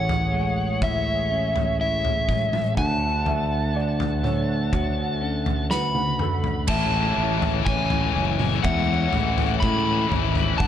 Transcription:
0.00 2.74 A1 medium
0.00 1.30 A2 medium
0.00 2.29 E3 medium
0.00 2.75 G#4 medium
0.00 0.82 C#5 medium
0.00 2.75 C#5 medium
0.00 0.83 F#5 medium
0.09 floor tom medium
0.33 2.27 G#3 medium
0.82 1.78 E4 medium
0.82 1.80 E5 medium
0.82 kick medium
0.82 floor tom medium
1.31 2.80 C#4 soft
1.56 floor tom medium
1.80 2.78 E4 medium
1.80 2.78 E5 medium
2.05 floor tom medium
2.28 2.77 G#3 medium
2.28 kick medium
2.28 mid tom soft
2.53 mid tom medium
2.77 6.65 D2 medium
2.77 3.73 D3 medium
2.77 6.66 D3 medium
2.77 6.65 A3 medium
2.77 3.26 F#5 medium
2.77 6.66 F#5 medium
2.77 5.68 A5 medium
2.77 kick medium
2.77 floor tom medium
3.25 4.22 A3 soft
3.25 3.76 E5 medium
3.25 floor tom medium
3.74 6.20 D3 medium
3.74 4.25 D5 medium
4.00 floor tom medium
4.23 6.19 A3 medium
4.23 5.23 C#5 medium
4.23 mid tom medium
4.72 5.70 F#4 medium
4.72 kick medium
4.72 floor tom medium
5.21 6.69 C#4 soft
5.46 floor tom medium
5.71 6.69 F#4 medium
5.71 6.21 B4 medium
5.71 6.68 B5 medium
5.71 snare soft
5.95 high tom soft
6.19 6.69 A3 medium
6.19 6.70 A4 medium
6.19 mid tom medium
6.44 floor tom medium
6.67 7.11 A1 medium
6.67 9.14 A2 medium
6.67 6.77 A2 medium
6.67 6.77 E3 medium
6.67 10.57 G#3 medium
6.67 10.57 C#5 medium
6.67 7.67 E5 medium
6.67 7.65 A5 medium
6.67 kick medium
6.67 floor tom medium
6.67 crash medium
6.77 6.85 A2 soft
6.77 6.85 E3 soft
6.85 6.92 A2 soft
6.85 6.93 E3 medium
6.93 7.00 A2 soft
6.93 7.01 E3 medium
7.00 7.08 A2 medium
7.00 7.08 E3 medium
7.08 7.15 A2 soft
7.08 7.16 E3 medium
7.16 7.60 A1 medium
7.16 7.22 A2 soft
7.16 7.23 E3 medium
7.16 9.63 E4 medium
7.23 7.30 A2 soft
7.23 7.31 E3 medium
7.31 7.38 A2 medium
7.31 7.38 E3 medium
7.39 7.46 A2 soft
7.39 7.46 E3 medium
7.39 floor tom medium
7.46 7.54 A2 medium
7.46 7.53 E3 medium
7.54 7.60 A2 soft
7.54 7.61 E3 soft
7.61 7.68 A2 soft
7.61 7.69 E3 medium
7.65 8.09 A1 medium
7.65 7.76 A2 soft
7.65 9.62 C#4 medium
7.65 8.66 C#5 medium
7.65 8.60 G#5 medium
7.65 kick medium
7.70 7.77 E3 medium
7.77 7.84 A2 medium
7.77 7.85 E3 medium
7.84 7.92 A2 soft
7.84 7.92 E3 medium
7.90 8.01 A2 medium
7.90 7.99 E3 medium
7.90 floor tom medium
7.99 8.07 A2 soft
7.99 8.07 E3 medium
8.07 8.14 A2 medium
8.07 8.15 E3 medium
8.15 8.58 F#1 medium
8.15 8.22 A2 soft
8.15 8.23 E3 medium
8.15 9.14 E3 medium
8.23 8.30 A2 medium
8.23 8.31 E3 medium
8.31 8.38 A2 soft
8.31 8.38 E3 soft
8.38 8.45 A2 medium
8.38 8.45 E3 medium
8.38 mid tom medium
8.45 8.53 A2 soft
8.45 8.53 E3 soft
8.53 8.60 A2 soft
8.53 8.62 E3 medium
8.61 9.07 E2 medium
8.61 8.68 A2 soft
8.61 8.69 E3 medium
8.61 9.63 E5 medium
8.61 9.60 F#5 medium
8.61 kick medium
8.61 floor tom medium
8.66 8.76 A2 medium
8.66 8.77 E3 medium
8.66 10.62 G#3 medium
8.77 8.84 A2 soft
8.77 8.85 E3 medium
8.85 8.92 A2 medium
8.85 8.91 E3 medium
8.92 8.99 A2 soft
8.92 8.99 E3 medium
9.00 9.07 A2 medium
9.00 9.07 E3 medium
9.08 9.16 A2 soft
9.08 9.15 E3 soft
9.13 9.56 A1 medium
9.13 9.22 A2 medium
9.13 10.62 E3 medium
9.13 9.23 E3 medium
9.13 floor tom medium
9.22 9.30 A2 soft
9.22 9.31 E3 medium
9.31 9.37 A2 medium
9.31 9.39 E3 medium
9.37 9.45 A2 soft
9.37 9.46 E3 soft
9.37 floor tom medium
9.46 9.53 A2 medium
9.46 9.53 E3 medium
9.53 9.61 A2 soft
9.53 9.61 E3 medium
9.60 9.68 A2 medium
9.60 10.05 A2 medium
9.60 9.69 E3 medium
9.60 10.61 C#4 medium
9.60 10.57 B5 medium
9.60 kick medium
9.68 9.76 A2 soft
9.68 9.77 E3 medium
9.76 9.84 A2 medium
9.76 9.85 E3 medium
9.84 9.91 A2 soft
9.84 9.92 E3 soft
9.92 9.99 A2 soft
9.92 10.00 E3 medium
10.00 10.06 A2 soft
10.00 10.07 E3 medium
10.07 10.14 A2 soft
10.07 10.15 E3 medium
10.12 10.54 G#1 medium
10.12 10.22 A2 soft
10.12 10.61 E4 medium
10.12 floor tom medium
10.16 10.23 E3 soft
10.22 10.30 A2 soft
10.22 10.30 E3 medium
10.30 10.38 A2 soft
10.30 10.38 E3 soft
10.35 10.45 A2 soft
10.35 10.46 E3 medium
10.35 floor tom medium
10.46 10.52 A2 soft
10.46 10.53 E3 soft
10.52 10.60 A2 soft
10.52 10.61 E3 medium
10.58 10.68 G1 medium
10.58 10.68 G2 medium
10.58 10.68 D3 medium
10.58 10.68 F#3 medium
10.58 10.68 B4 medium
10.58 10.68 F#5 medium
10.58 10.68 A5 loud
10.58 kick loud
10.58 floor tom medium

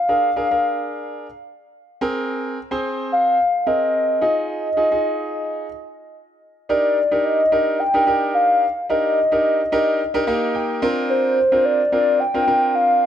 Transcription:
0.00 1.02 F5 loud
0.09 0.28 D4 medium
0.09 0.28 G#4 medium
0.09 0.28 A#4 medium
0.36 0.46 D4 medium
0.36 0.46 G#4 medium
0.36 0.47 A#4 medium
0.51 1.26 D4 medium
0.51 1.26 G#4 medium
0.51 1.26 A#4 medium
2.01 2.56 C4 medium
2.01 2.57 G#4 medium
2.01 2.57 A#4 loud
2.71 3.36 C4 medium
2.71 3.36 G#4 medium
2.71 3.37 C5 medium
3.12 3.69 F5 loud
3.67 4.22 C4 medium
3.67 4.20 G#4 medium
3.67 4.22 A#4 medium
3.67 4.21 D#5 loud
4.21 4.66 D#4 medium
4.21 4.67 F4 medium
4.21 4.67 G#4 medium
4.21 4.47 D#5 loud
4.49 6.10 D#5 loud
4.77 4.87 D#4 medium
4.77 4.87 F4 medium
4.77 4.87 G#4 medium
4.91 5.66 D#4 medium
4.91 5.66 F4 medium
4.91 5.66 G#4 medium
6.69 6.98 D4 medium
6.69 6.98 D#4 medium
6.69 6.98 G4 medium
6.69 6.98 A#4 medium
6.69 7.26 D5 loud
7.11 7.40 D4 medium
7.11 7.40 D#4 medium
7.11 7.40 G4 medium
7.11 7.40 A#4 medium
7.25 7.81 D#5 loud
7.52 7.80 D4 medium
7.52 7.80 D#4 medium
7.52 7.80 G4 medium
7.52 7.80 A#4 medium
7.80 8.34 G5 loud
7.94 8.03 D4 medium
7.94 8.03 D#4 medium
7.94 8.03 G4 medium
7.94 8.03 A#4 medium
8.07 8.63 D4 medium
8.07 8.63 D#4 medium
8.07 8.64 G4 medium
8.07 8.64 A#4 medium
8.35 8.86 F5 loud
8.90 9.18 D4 medium
8.90 9.18 D#4 medium
8.90 9.18 G4 medium
8.90 9.18 A#4 medium
8.90 10.79 D#5 loud
9.32 9.60 D4 medium
9.32 9.60 D#4 medium
9.32 9.60 G4 medium
9.32 9.60 A#4 medium
9.72 10.00 D4 medium
9.72 10.00 D#4 medium
9.72 10.01 G4 medium
9.72 10.01 A#4 loud
10.14 10.23 D4 medium
10.14 10.23 D#4 medium
10.14 10.23 G4 medium
10.14 10.23 A#4 loud
10.27 10.82 A#3 medium
10.27 10.82 D#4 medium
10.27 10.82 G4 medium
10.27 10.81 A#4 loud
10.27 10.53 F5 medium
10.55 10.80 G5 medium
10.82 11.37 C4 loud
10.82 11.37 D4 medium
10.82 11.38 F4 medium
10.82 11.38 A#4 loud
10.82 11.08 A#5 medium
11.10 11.66 C5 loud
11.52 11.80 C4 medium
11.52 11.80 D4 medium
11.52 11.80 F4 medium
11.52 11.80 A#4 medium
11.65 12.21 D5 loud
11.92 12.21 C4 medium
11.92 12.21 D4 medium
11.92 12.21 F4 medium
11.92 12.21 A#4 medium
12.20 12.76 G5 loud
12.34 12.43 C4 medium
12.34 12.43 D4 medium
12.34 12.43 F4 medium
12.34 12.43 A#4 medium
12.47 13.04 C4 medium
12.47 13.04 D4 medium
12.47 13.04 F4 medium
12.47 13.04 A#4 medium
12.75 13.06 F5 loud

